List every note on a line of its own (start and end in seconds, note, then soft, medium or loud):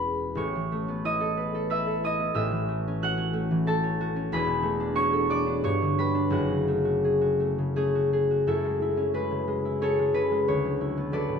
0.00 0.39 E1 medium
0.00 0.37 E2 medium
0.00 0.38 G#3 soft
0.00 2.13 C#4 soft
0.00 0.39 F#4 soft
0.00 0.40 G#4 medium
0.00 1.36 B4 medium
0.00 0.37 C#5 medium
0.00 0.85 B5 loud
0.00 0.36 C#6 loud
0.35 2.33 A1 medium
0.35 2.34 A2 medium
0.35 4.28 C#5 medium
0.35 4.27 C#6 medium
0.55 2.38 E3 soft
0.72 2.67 A3 medium
0.88 2.19 B3 medium
1.05 2.02 E4 medium
1.05 2.05 D#5 medium
1.05 2.03 D#6 loud
1.20 1.53 A4 medium
1.37 1.69 B4 medium
1.55 1.85 A4 medium
1.70 2.38 B4 medium
1.70 2.35 E5 medium
1.70 2.34 E6 medium
1.86 3.67 A4 medium
2.04 5.63 E4 medium
2.04 2.39 D#5 medium
2.04 2.59 D#6 loud
2.20 2.38 B3 medium
2.34 4.30 A1 medium
2.34 4.31 A2 medium
2.34 5.63 E5 medium
2.34 5.62 E6 loud
2.51 3.50 E3 medium
2.69 3.32 A3 medium
2.88 3.16 C#4 medium
3.02 3.99 F#4 medium
3.02 6.31 F#5 medium
3.02 6.93 F#6 loud
3.17 3.82 C#4 medium
3.33 3.65 A3 medium
3.51 4.31 E3 medium
3.66 4.61 A3 medium
3.66 5.11 A4 medium
3.66 5.63 A5 loud
3.83 4.15 C#4 medium
4.01 4.94 F#4 medium
4.16 4.32 C#4 medium
4.32 5.64 E1 medium
4.32 5.65 E2 medium
4.32 5.98 B4 medium
4.32 5.97 B5 loud
4.47 5.64 B2 medium
4.62 5.63 A3 medium
4.80 5.45 D4 medium
4.95 5.29 F#4 medium
4.95 5.64 C#5 medium
4.95 5.50 C#6 loud
5.13 5.64 A4 medium
5.29 6.32 F#4 medium
5.29 6.35 D5 medium
5.29 6.35 D6 loud
5.46 6.13 D4 medium
5.64 6.34 G2 medium
5.64 9.55 C#5 medium
5.64 6.21 C#6 loud
5.82 6.35 D3 medium
5.98 6.34 G3 medium
5.98 6.35 B4 medium
5.98 6.34 B5 loud
6.15 6.34 D4 medium
6.30 8.48 F#1 medium
6.30 8.46 F#2 medium
6.30 6.84 F#4 medium
6.30 10.22 F#5 medium
6.50 7.57 C#3 soft
6.68 7.39 A3 medium
6.85 7.20 F#4 medium
7.04 7.75 G#4 medium
7.21 7.94 F#4 soft
7.40 7.74 A3 medium
7.58 8.49 C#3 soft
7.76 11.39 A3 medium
7.76 8.96 C#4 medium
7.76 8.12 G#4 medium
7.95 8.29 F#4 medium
8.13 9.81 G#4 medium
8.31 8.46 F#4 soft
8.47 10.49 F#2 medium
8.47 8.81 E4 medium
8.47 11.39 F#4 medium
8.47 9.82 A4 medium
8.64 9.13 G#3 soft
8.82 9.64 E4 medium
8.97 9.81 C#4 soft
9.14 9.46 G#3 medium
9.14 10.13 B4 medium
9.31 10.13 C#3 soft
9.48 9.97 G#3 medium
9.65 10.80 E4 soft
9.81 10.49 C#4 medium
9.81 10.49 G#4 medium
9.81 11.12 A4 medium
9.81 10.47 C#5 medium
9.99 10.30 G#3 medium
10.14 10.49 C#3 soft
10.14 10.69 B4 medium
10.31 10.49 G#3 medium
10.48 11.39 D2 medium
10.48 11.39 C#5 medium
10.65 11.11 F#3 soft
10.81 11.39 E4 soft
10.97 11.39 B3 soft
11.12 11.39 F#3 medium
11.12 11.39 A4 medium
11.12 11.39 B4 medium
11.12 11.39 D5 medium
11.28 11.39 A2 soft